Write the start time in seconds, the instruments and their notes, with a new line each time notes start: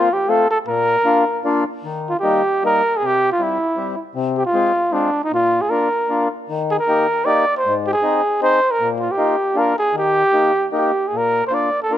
Already playing: trumpet F4
0.13 trumpet G4
0.28 accordion A3 C4 F4, trumpet A4
0.51 trumpet A4
0.67 accordion A#2, trumpet A#4
1.05 accordion A#3 D4 F4
1.45 accordion A#3 D4 F4
1.84 accordion D#3
2.09 trumpet F4
2.20 accordion G3 A#3 D#4, trumpet G4
2.63 accordion G3 A#3 D#4, trumpet A#4
2.97 trumpet G#4
3.02 accordion C3, trumpet G4
3.32 trumpet F4
3.39 accordion G3 C4 E4, trumpet E4
3.77 accordion G3 C4 E4
4.15 accordion C3
4.37 trumpet G4
4.45 trumpet F4
4.53 accordion G#3 C4 F4
4.92 accordion G#3 C4 F4, trumpet D4
5.24 trumpet D#4
5.31 accordion A#2, trumpet F4
5.61 trumpet G#4
5.70 accordion A#3 D4 F4, trumpet A#4
6.09 accordion A#3 D4 F4
6.49 accordion D#3
6.70 trumpet G#4
6.79 trumpet A#4
6.88 accordion A#3 D#4 G4
7.25 accordion A#3 D#4 G4, trumpet D5
7.57 trumpet C5
7.65 accordion G#2
7.86 trumpet G4
7.93 trumpet G#4
8.03 accordion C4 D#4 G#4
8.41 accordion C4 D#4 G#4, trumpet C5
8.71 trumpet A#4
8.80 accordion A#2
8.99 trumpet F4
9.11 trumpet G4
9.18 accordion A#3 D#4 F4
9.55 accordion A#3 D4 F4, trumpet A#4
9.78 trumpet G#4
9.93 accordion D#3
9.98 trumpet G4
10.33 accordion A#3 D#4 G4
10.72 accordion A#3 D#4 G4
10.78 trumpet G4
11.08 trumpet G#4
11.13 accordion A#2, trumpet A#4
11.47 accordion A#3 F4, trumpet C5
11.51 accordion D4, trumpet D5
11.82 trumpet A4
11.91 accordion A#3 D4 F4, trumpet A#4